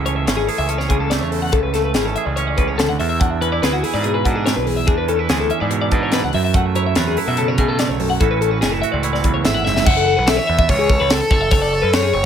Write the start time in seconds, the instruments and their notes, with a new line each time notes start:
Already playing: picked electric bass C#2, clean electric guitar C#3 E3 C#4 G#4
0.06 clean electric guitar A3 C#5, closed hi-hat
0.16 clean electric guitar E5
0.26 picked electric bass G#1, clean electric guitar E3 C#4 C#5, snare, closed hi-hat
0.37 clean electric guitar G#4
0.47 clean electric guitar G#4 A4, open hi-hat
0.58 picked electric bass C#2, clean electric guitar E5
0.69 clean electric guitar C#4 A4, closed hi-hat
0.78 clean electric guitar C#5, snare
0.89 picked electric bass C#2, clean electric guitar C#3 G#4, kick, closed hi-hat
1.00 clean electric guitar A4
1.10 clean electric guitar A3 D5, snare, closed hi-hat
1.21 picked electric bass E2, clean electric guitar C#5
1.31 clean electric guitar A4, open hi-hat
1.42 clean electric guitar F#5
1.52 picked electric bass C#2, clean electric guitar C#3 A4, kick, closed hi-hat
1.63 clean electric guitar B4
1.74 clean electric guitar A3 A4, snare, closed hi-hat
1.84 clean electric guitar B4
1.94 picked electric bass G#1, clean electric guitar E3 C#4 G#4, snare, closed hi-hat
2.05 clean electric guitar A4
2.16 clean electric guitar G#4 E5, closed hi-hat
2.26 picked electric bass C#2, clean electric guitar D5
2.36 clean electric guitar C#4 C#5, closed hi-hat
2.47 clean electric guitar D5
2.57 picked electric bass C#2, clean electric guitar C#3 B4, kick, closed hi-hat
2.68 clean electric guitar C#5
2.78 clean electric guitar D3 A4, snare, closed hi-hat
2.89 picked electric bass D2, clean electric guitar F#5
2.99 picked electric bass E2, clean electric guitar E2 E5, open hi-hat
3.09 clean electric guitar E5
3.20 clean electric guitar D4 F#5, kick, closed hi-hat
3.31 clean electric guitar E5
3.41 clean electric guitar E3 C#4 B4, closed hi-hat
3.52 clean electric guitar E4 D5
3.62 picked electric bass D2, clean electric guitar G#4 B4, snare, closed hi-hat
3.73 clean electric guitar F#4
3.83 clean electric guitar E4 G#4, open hi-hat
3.94 picked electric bass G#2, clean electric guitar D5
4.04 clean electric guitar B2 G#4, closed hi-hat
4.14 clean electric guitar B4
4.25 picked electric bass G#2, clean electric guitar D4 F#4, kick, closed hi-hat
4.36 clean electric guitar G#4
4.46 clean electric guitar C#5, snare, closed hi-hat
4.56 picked electric bass B1, clean electric guitar B4
4.67 clean electric guitar E2 G#4, open hi-hat
4.77 clean electric guitar E5
4.87 picked electric bass E2, clean electric guitar D4 G#4, kick, closed hi-hat
4.98 clean electric guitar B4
5.08 clean electric guitar E3 C#4 A4, closed hi-hat
5.19 clean electric guitar E4 B4
5.29 picked electric bass D2, clean electric guitar G#4, snare, closed hi-hat
5.40 clean electric guitar A4
5.50 clean electric guitar C#4 E5, closed hi-hat
5.60 picked electric bass G#2, clean electric guitar E4 D5
5.70 clean electric guitar B2 C#5, closed hi-hat
5.81 clean electric guitar D5
5.91 picked electric bass G#2, clean electric guitar D4 B4, kick, closed hi-hat
6.03 clean electric guitar C#5
6.12 clean electric guitar B4, snare, closed hi-hat
6.24 picked electric bass C#2, clean electric guitar F#5
6.33 clean electric guitar F#2 E5, picked electric bass F#2, open hi-hat
6.45 clean electric guitar E5
6.54 clean electric guitar A3 F#5, kick, closed hi-hat
6.66 clean electric guitar E5
6.75 clean electric guitar F#3 E4 C#5, closed hi-hat
6.86 clean electric guitar E5
6.95 picked electric bass E2, clean electric guitar B4 C#5, snare, closed hi-hat
7.07 clean electric guitar G#4
7.17 clean electric guitar E4 A4, open hi-hat
7.27 picked electric bass B2, clean electric guitar E5
7.37 clean electric guitar C#3 A4, closed hi-hat
7.48 clean electric guitar C#5
7.58 picked electric bass B2, clean electric guitar A3 G#4, kick, closed hi-hat
7.68 clean electric guitar A4
7.79 clean electric guitar D5, snare, closed hi-hat
7.89 picked electric bass B1, clean electric guitar C#5
8.00 clean electric guitar F#2 A4, open hi-hat
8.10 clean electric guitar F#5
8.20 picked electric bass A1, clean electric guitar A2 E3 C#4 E4 F#4 A4, kick, closed hi-hat
8.31 clean electric guitar B4
8.41 clean electric guitar C#4 A4, closed hi-hat
8.51 clean electric guitar B4
8.61 picked electric bass F#1, clean electric guitar E3 C#4 G#4, snare, closed hi-hat
8.72 clean electric guitar E4 A4
8.82 clean electric guitar F#4 E5, closed hi-hat
8.92 picked electric bass C#2, clean electric guitar D5
9.03 clean electric guitar E4 C#5, closed hi-hat
9.13 clean electric guitar D5, snare
9.23 picked electric bass C#2, clean electric guitar E2 B4, kick, closed hi-hat
9.34 clean electric guitar C#5
9.44 picked electric bass G#1, clean electric guitar A2 A4, overdriven electric guitar E5, snare, closed hi-hat
9.54 clean electric guitar F#5
9.65 picked electric bass F#1, clean electric guitar G#2 E5, snare
9.76 clean electric guitar E5, snare
9.86 picked electric bass F#1, clean electric guitar E5, overdriven electric guitar F#5, kick, crash
9.97 clean electric guitar A4
10.07 clean electric guitar A4
10.17 picked electric bass B1, clean electric guitar B4
10.27 clean electric guitar A4, overdriven electric guitar E5, snare, open hi-hat
10.37 clean electric guitar C#5
10.47 picked electric bass E2, clean electric guitar E5
10.59 clean electric guitar E5, kick
10.69 picked electric bass C#2, clean electric guitar C#5, overdriven electric guitar C#5, kick, open hi-hat
10.79 clean electric guitar G#4
10.90 clean electric guitar A4, kick
11.00 picked electric bass C#2, clean electric guitar B4
11.10 overdriven electric guitar A4, clean electric guitar C#5, snare, open hi-hat
11.21 clean electric guitar A4
11.31 picked electric bass F#1, clean electric guitar C#5, kick
11.41 clean electric guitar E5
11.51 picked electric bass F#1, overdriven electric guitar A4, clean electric guitar C#5, kick, open hi-hat
11.62 clean electric guitar D5
11.72 clean electric guitar C#5
11.82 picked electric bass F#2, clean electric guitar B4
11.92 clean electric guitar A4, overdriven electric guitar C#5, snare, open hi-hat
12.03 clean electric guitar G#4
12.14 picked electric bass F#1, clean electric guitar C#5